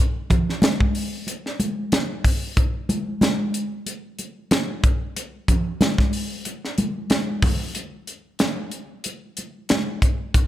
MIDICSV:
0, 0, Header, 1, 2, 480
1, 0, Start_track
1, 0, Tempo, 647948
1, 1908, Time_signature, 4, 2, 24, 8
1, 7759, End_track
2, 0, Start_track
2, 0, Title_t, "Drums"
2, 222, Note_on_c, 9, 64, 56
2, 226, Note_on_c, 9, 36, 68
2, 228, Note_on_c, 9, 42, 52
2, 296, Note_off_c, 9, 64, 0
2, 300, Note_off_c, 9, 36, 0
2, 302, Note_off_c, 9, 42, 0
2, 367, Note_on_c, 9, 38, 31
2, 441, Note_off_c, 9, 38, 0
2, 458, Note_on_c, 9, 63, 86
2, 466, Note_on_c, 9, 42, 77
2, 473, Note_on_c, 9, 38, 97
2, 532, Note_off_c, 9, 63, 0
2, 540, Note_off_c, 9, 42, 0
2, 547, Note_off_c, 9, 38, 0
2, 596, Note_on_c, 9, 36, 66
2, 670, Note_off_c, 9, 36, 0
2, 702, Note_on_c, 9, 46, 62
2, 776, Note_off_c, 9, 46, 0
2, 940, Note_on_c, 9, 62, 27
2, 947, Note_on_c, 9, 42, 76
2, 1014, Note_off_c, 9, 62, 0
2, 1021, Note_off_c, 9, 42, 0
2, 1082, Note_on_c, 9, 38, 30
2, 1156, Note_off_c, 9, 38, 0
2, 1182, Note_on_c, 9, 63, 61
2, 1184, Note_on_c, 9, 42, 49
2, 1256, Note_off_c, 9, 63, 0
2, 1258, Note_off_c, 9, 42, 0
2, 1422, Note_on_c, 9, 42, 68
2, 1427, Note_on_c, 9, 63, 63
2, 1430, Note_on_c, 9, 38, 94
2, 1497, Note_off_c, 9, 42, 0
2, 1501, Note_off_c, 9, 63, 0
2, 1504, Note_off_c, 9, 38, 0
2, 1663, Note_on_c, 9, 36, 69
2, 1664, Note_on_c, 9, 46, 65
2, 1669, Note_on_c, 9, 62, 28
2, 1737, Note_off_c, 9, 36, 0
2, 1738, Note_off_c, 9, 46, 0
2, 1743, Note_off_c, 9, 62, 0
2, 1901, Note_on_c, 9, 62, 29
2, 1904, Note_on_c, 9, 36, 102
2, 1904, Note_on_c, 9, 42, 66
2, 1975, Note_off_c, 9, 62, 0
2, 1978, Note_off_c, 9, 36, 0
2, 1979, Note_off_c, 9, 42, 0
2, 2141, Note_on_c, 9, 63, 68
2, 2145, Note_on_c, 9, 42, 50
2, 2215, Note_off_c, 9, 63, 0
2, 2219, Note_off_c, 9, 42, 0
2, 2380, Note_on_c, 9, 63, 84
2, 2386, Note_on_c, 9, 42, 69
2, 2393, Note_on_c, 9, 38, 87
2, 2454, Note_off_c, 9, 63, 0
2, 2460, Note_off_c, 9, 42, 0
2, 2468, Note_off_c, 9, 38, 0
2, 2623, Note_on_c, 9, 42, 54
2, 2697, Note_off_c, 9, 42, 0
2, 2862, Note_on_c, 9, 62, 26
2, 2863, Note_on_c, 9, 42, 72
2, 2936, Note_off_c, 9, 62, 0
2, 2938, Note_off_c, 9, 42, 0
2, 3101, Note_on_c, 9, 42, 52
2, 3105, Note_on_c, 9, 62, 25
2, 3175, Note_off_c, 9, 42, 0
2, 3179, Note_off_c, 9, 62, 0
2, 3342, Note_on_c, 9, 42, 75
2, 3342, Note_on_c, 9, 63, 59
2, 3349, Note_on_c, 9, 38, 96
2, 3416, Note_off_c, 9, 42, 0
2, 3416, Note_off_c, 9, 63, 0
2, 3423, Note_off_c, 9, 38, 0
2, 3583, Note_on_c, 9, 36, 92
2, 3585, Note_on_c, 9, 42, 53
2, 3587, Note_on_c, 9, 62, 24
2, 3657, Note_off_c, 9, 36, 0
2, 3659, Note_off_c, 9, 42, 0
2, 3661, Note_off_c, 9, 62, 0
2, 3826, Note_on_c, 9, 42, 75
2, 3828, Note_on_c, 9, 62, 22
2, 3900, Note_off_c, 9, 42, 0
2, 3902, Note_off_c, 9, 62, 0
2, 4061, Note_on_c, 9, 64, 57
2, 4062, Note_on_c, 9, 36, 65
2, 4064, Note_on_c, 9, 42, 61
2, 4136, Note_off_c, 9, 36, 0
2, 4136, Note_off_c, 9, 64, 0
2, 4138, Note_off_c, 9, 42, 0
2, 4302, Note_on_c, 9, 63, 77
2, 4304, Note_on_c, 9, 42, 77
2, 4312, Note_on_c, 9, 38, 91
2, 4376, Note_off_c, 9, 63, 0
2, 4378, Note_off_c, 9, 42, 0
2, 4386, Note_off_c, 9, 38, 0
2, 4433, Note_on_c, 9, 36, 69
2, 4441, Note_on_c, 9, 38, 30
2, 4507, Note_off_c, 9, 36, 0
2, 4515, Note_off_c, 9, 38, 0
2, 4541, Note_on_c, 9, 46, 63
2, 4615, Note_off_c, 9, 46, 0
2, 4780, Note_on_c, 9, 42, 79
2, 4788, Note_on_c, 9, 62, 25
2, 4854, Note_off_c, 9, 42, 0
2, 4862, Note_off_c, 9, 62, 0
2, 4923, Note_on_c, 9, 38, 32
2, 4997, Note_off_c, 9, 38, 0
2, 5020, Note_on_c, 9, 42, 54
2, 5025, Note_on_c, 9, 62, 24
2, 5025, Note_on_c, 9, 63, 60
2, 5095, Note_off_c, 9, 42, 0
2, 5099, Note_off_c, 9, 62, 0
2, 5099, Note_off_c, 9, 63, 0
2, 5259, Note_on_c, 9, 42, 67
2, 5264, Note_on_c, 9, 63, 68
2, 5266, Note_on_c, 9, 38, 92
2, 5333, Note_off_c, 9, 42, 0
2, 5338, Note_off_c, 9, 63, 0
2, 5340, Note_off_c, 9, 38, 0
2, 5500, Note_on_c, 9, 36, 86
2, 5500, Note_on_c, 9, 46, 70
2, 5509, Note_on_c, 9, 62, 26
2, 5509, Note_on_c, 9, 64, 59
2, 5574, Note_off_c, 9, 36, 0
2, 5574, Note_off_c, 9, 46, 0
2, 5583, Note_off_c, 9, 62, 0
2, 5583, Note_off_c, 9, 64, 0
2, 5740, Note_on_c, 9, 42, 74
2, 5751, Note_on_c, 9, 62, 26
2, 5814, Note_off_c, 9, 42, 0
2, 5825, Note_off_c, 9, 62, 0
2, 5981, Note_on_c, 9, 42, 53
2, 6055, Note_off_c, 9, 42, 0
2, 6215, Note_on_c, 9, 42, 67
2, 6223, Note_on_c, 9, 38, 93
2, 6225, Note_on_c, 9, 63, 83
2, 6289, Note_off_c, 9, 42, 0
2, 6297, Note_off_c, 9, 38, 0
2, 6299, Note_off_c, 9, 63, 0
2, 6456, Note_on_c, 9, 42, 54
2, 6530, Note_off_c, 9, 42, 0
2, 6697, Note_on_c, 9, 42, 73
2, 6711, Note_on_c, 9, 62, 26
2, 6771, Note_off_c, 9, 42, 0
2, 6785, Note_off_c, 9, 62, 0
2, 6939, Note_on_c, 9, 42, 58
2, 6952, Note_on_c, 9, 62, 24
2, 7014, Note_off_c, 9, 42, 0
2, 7026, Note_off_c, 9, 62, 0
2, 7179, Note_on_c, 9, 42, 75
2, 7186, Note_on_c, 9, 38, 99
2, 7193, Note_on_c, 9, 63, 62
2, 7253, Note_off_c, 9, 42, 0
2, 7260, Note_off_c, 9, 38, 0
2, 7267, Note_off_c, 9, 63, 0
2, 7423, Note_on_c, 9, 36, 74
2, 7424, Note_on_c, 9, 42, 55
2, 7435, Note_on_c, 9, 62, 24
2, 7497, Note_off_c, 9, 36, 0
2, 7499, Note_off_c, 9, 42, 0
2, 7509, Note_off_c, 9, 62, 0
2, 7662, Note_on_c, 9, 42, 80
2, 7663, Note_on_c, 9, 36, 94
2, 7672, Note_on_c, 9, 62, 23
2, 7737, Note_off_c, 9, 36, 0
2, 7737, Note_off_c, 9, 42, 0
2, 7746, Note_off_c, 9, 62, 0
2, 7759, End_track
0, 0, End_of_file